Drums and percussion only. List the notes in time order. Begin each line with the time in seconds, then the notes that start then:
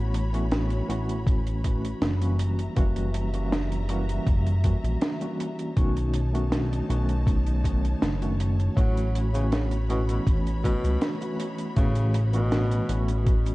0.14 closed hi-hat
0.34 closed hi-hat
0.51 snare, closed hi-hat
0.70 closed hi-hat
0.90 closed hi-hat
1.09 closed hi-hat
1.27 kick, closed hi-hat
1.47 closed hi-hat
1.64 kick, closed hi-hat
1.85 closed hi-hat
2.02 snare, closed hi-hat
2.22 closed hi-hat
2.39 closed hi-hat
2.59 closed hi-hat
2.76 kick, closed hi-hat
2.96 closed hi-hat
3.14 closed hi-hat
3.34 closed hi-hat
3.52 snare, closed hi-hat
3.72 closed hi-hat
3.89 closed hi-hat
4.09 closed hi-hat
4.27 kick, closed hi-hat
4.47 closed hi-hat
4.64 kick, closed hi-hat
4.85 closed hi-hat
5.02 snare, closed hi-hat
5.21 closed hi-hat
5.40 closed hi-hat
5.59 closed hi-hat
5.77 kick, closed hi-hat
5.97 closed hi-hat
6.14 closed hi-hat
6.35 closed hi-hat
6.52 snare, closed hi-hat
6.73 closed hi-hat
6.90 closed hi-hat
7.09 closed hi-hat
7.27 kick, closed hi-hat
7.46 closed hi-hat
7.64 kick, closed hi-hat
7.85 closed hi-hat
8.02 snare, closed hi-hat
8.22 closed hi-hat
8.40 closed hi-hat
8.60 closed hi-hat
8.77 kick, closed hi-hat, cabasa
8.97 closed hi-hat, cabasa
9.15 closed hi-hat
9.34 closed hi-hat, cabasa
9.52 snare, closed hi-hat, cabasa
9.71 closed hi-hat, cabasa
9.90 closed hi-hat
10.09 closed hi-hat, cabasa
10.27 kick, closed hi-hat, cabasa
10.47 closed hi-hat, cabasa
10.64 kick, closed hi-hat
10.84 closed hi-hat, cabasa
11.02 snare, closed hi-hat, cabasa
11.21 closed hi-hat, cabasa
11.40 closed hi-hat
11.58 closed hi-hat, cabasa
11.77 kick, closed hi-hat, cabasa
11.95 closed hi-hat, cabasa
12.14 closed hi-hat
12.33 closed hi-hat, cabasa
12.52 snare, closed hi-hat, cabasa
12.71 closed hi-hat, cabasa
12.89 closed hi-hat
13.08 closed hi-hat, cabasa
13.27 kick, closed hi-hat, cabasa
13.46 closed hi-hat, cabasa